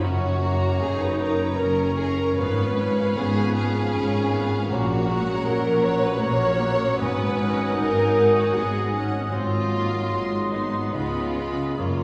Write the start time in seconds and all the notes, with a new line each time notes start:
Already playing: C#4
0.01 F#1 F#2 F#3 C#4 F#4 C#5 A#5
0.41 A#3 C#4 A#5
0.81 F#1 F#2 D#4 F#4 G#4
1.01 B4
1.20 A#4 A#5
1.40 B4
1.58 F#1 F#2 C#4 F#4 A#4
1.99 C#4 G#4 A#5
2.18 A#4
2.36 G#1 G#2 F3 B3 B4 F5 B5
2.78 C#4 F5
3.15 G#1 G#2 B3 F4 G#4
3.55 G#4 B4 F5
3.94 G#1 G#2 C#4 F4
4.32 B3 C#4 F5
4.69 A#1 A#2 F#3 A#3 F#4 C#5 A#5
5.08 G#3 C#4 F#5
5.46 A#1 A#2 F#3 F#4 A#4
5.84 A#4 C#5 F#5
6.04 B4
6.22 A#1 A#2 A#3 F#4 C#5
6.60 C#4 F#5
6.98 G#1 G#2 B3 B4 D#5 F#5 G#5
7.37 C#4 D#4 F#5
7.74 G#1 G#2 D#4 F#4 A#4
8.14 B4 F#5
8.34 F#4
8.53 G#1 G#2 B3 F#4 G#4
8.92 C#4 D#4 F#5
9.30 G#2 F#3 C4 F4 D#5 C6
9.35 G#1
9.70 A#3 D#4 C6
10.10 G#1 G#2 G#3 F#4
10.51 B3 D#4 C5 C6
10.92 C#2 C#3 G#3 F4 D#5 B5
11.35 G#4 B4 B5
11.77 F#1 F#2 A#3 F4 C#5 A#5